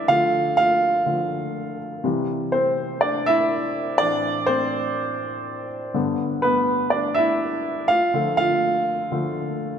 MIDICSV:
0, 0, Header, 1, 2, 480
1, 0, Start_track
1, 0, Tempo, 487805
1, 92, Time_signature, 4, 2, 24, 8
1, 9632, End_track
2, 0, Start_track
2, 0, Title_t, "Grand piano"
2, 0, Program_c, 0, 0
2, 0, Control_c, 0, 64, 127
2, 0, Note_on_c, 0, 43, 57
2, 0, Note_on_c, 0, 50, 50
2, 0, Note_on_c, 0, 59, 66
2, 0, Note_on_c, 0, 62, 66
2, 0, Note_on_c, 0, 64, 74
2, 0, Note_on_c, 0, 71, 80
2, 0, Note_on_c, 0, 74, 93
2, 0, Note_on_c, 0, 76, 99
2, 82, Note_on_c, 0, 77, 111
2, 85, Note_off_c, 0, 50, 0
2, 85, Note_on_c, 0, 50, 54
2, 97, Note_on_c, 0, 53, 48
2, 99, Note_on_c, 0, 65, 87
2, 101, Note_on_c, 0, 57, 65
2, 103, Note_off_c, 0, 74, 0
2, 103, Control_c, 0, 64, 0
2, 107, Note_off_c, 0, 71, 0
2, 110, Note_off_c, 0, 59, 0
2, 111, Note_off_c, 0, 43, 0
2, 111, Note_off_c, 0, 64, 0
2, 111, Note_off_c, 0, 76, 0
2, 112, Note_off_c, 0, 62, 0
2, 264, Control_c, 0, 64, 127
2, 533, Note_off_c, 0, 77, 0
2, 542, Note_off_c, 0, 65, 0
2, 561, Note_on_c, 0, 77, 109
2, 582, Note_on_c, 0, 65, 79
2, 773, Note_off_c, 0, 50, 0
2, 779, Note_off_c, 0, 53, 0
2, 781, Note_off_c, 0, 57, 0
2, 1044, Note_on_c, 0, 50, 49
2, 1050, Note_on_c, 0, 53, 47
2, 1053, Note_on_c, 0, 57, 46
2, 1264, Note_off_c, 0, 50, 0
2, 1267, Note_off_c, 0, 53, 0
2, 1269, Note_off_c, 0, 57, 0
2, 1728, Note_off_c, 0, 77, 0
2, 1738, Note_off_c, 0, 65, 0
2, 2004, Note_on_c, 0, 48, 57
2, 2013, Note_on_c, 0, 52, 52
2, 2015, Note_on_c, 0, 55, 61
2, 2026, Control_c, 0, 64, 0
2, 2183, Control_c, 0, 64, 127
2, 2481, Note_on_c, 0, 72, 82
2, 2500, Note_on_c, 0, 60, 67
2, 2693, Note_off_c, 0, 48, 0
2, 2697, Note_off_c, 0, 52, 0
2, 2699, Note_off_c, 0, 55, 0
2, 2943, Note_off_c, 0, 60, 0
2, 2960, Note_on_c, 0, 74, 91
2, 2982, Note_off_c, 0, 72, 0
2, 2982, Note_on_c, 0, 62, 66
2, 3201, Note_off_c, 0, 62, 0
2, 3212, Note_on_c, 0, 76, 107
2, 3214, Note_off_c, 0, 74, 0
2, 3230, Note_on_c, 0, 64, 79
2, 3659, Note_off_c, 0, 76, 0
2, 3669, Note_off_c, 0, 64, 0
2, 3917, Note_on_c, 0, 74, 115
2, 3921, Note_on_c, 0, 45, 51
2, 3930, Note_on_c, 0, 52, 51
2, 3934, Note_on_c, 0, 60, 63
2, 3936, Note_on_c, 0, 62, 77
2, 3948, Control_c, 0, 64, 0
2, 4128, Control_c, 0, 64, 127
2, 4381, Note_off_c, 0, 62, 0
2, 4393, Note_on_c, 0, 72, 104
2, 4400, Note_off_c, 0, 60, 0
2, 4415, Note_on_c, 0, 60, 80
2, 4420, Note_off_c, 0, 74, 0
2, 4611, Note_off_c, 0, 45, 0
2, 4616, Note_off_c, 0, 52, 0
2, 5565, Note_off_c, 0, 72, 0
2, 5575, Note_off_c, 0, 60, 0
2, 5846, Note_on_c, 0, 43, 55
2, 5848, Note_on_c, 0, 50, 50
2, 5853, Note_on_c, 0, 59, 59
2, 5866, Control_c, 0, 64, 0
2, 6034, Control_c, 0, 64, 127
2, 6318, Note_on_c, 0, 71, 86
2, 6326, Note_off_c, 0, 59, 0
2, 6341, Note_on_c, 0, 59, 65
2, 6534, Note_off_c, 0, 43, 0
2, 6535, Note_off_c, 0, 50, 0
2, 6784, Note_off_c, 0, 59, 0
2, 6793, Note_on_c, 0, 74, 88
2, 6821, Note_off_c, 0, 71, 0
2, 6829, Note_on_c, 0, 62, 63
2, 7031, Note_on_c, 0, 76, 99
2, 7045, Note_off_c, 0, 62, 0
2, 7051, Note_off_c, 0, 74, 0
2, 7068, Note_on_c, 0, 64, 78
2, 7488, Note_off_c, 0, 76, 0
2, 7508, Note_off_c, 0, 64, 0
2, 7754, Note_on_c, 0, 77, 107
2, 7775, Note_on_c, 0, 65, 80
2, 7785, Control_c, 0, 64, 0
2, 7965, Control_c, 0, 64, 127
2, 8008, Note_on_c, 0, 50, 54
2, 8014, Note_on_c, 0, 53, 53
2, 8022, Note_on_c, 0, 57, 61
2, 8221, Note_off_c, 0, 65, 0
2, 8224, Note_off_c, 0, 77, 0
2, 8238, Note_on_c, 0, 77, 109
2, 8258, Note_on_c, 0, 65, 79
2, 8956, Note_off_c, 0, 50, 0
2, 8959, Note_off_c, 0, 53, 0
2, 8965, Note_off_c, 0, 57, 0
2, 8971, Note_on_c, 0, 50, 51
2, 8973, Note_on_c, 0, 53, 48
2, 8980, Note_on_c, 0, 57, 57
2, 9188, Note_off_c, 0, 50, 0
2, 9189, Note_off_c, 0, 53, 0
2, 9193, Note_off_c, 0, 57, 0
2, 9406, Note_off_c, 0, 77, 0
2, 9416, Note_off_c, 0, 65, 0
2, 9632, End_track
0, 0, End_of_file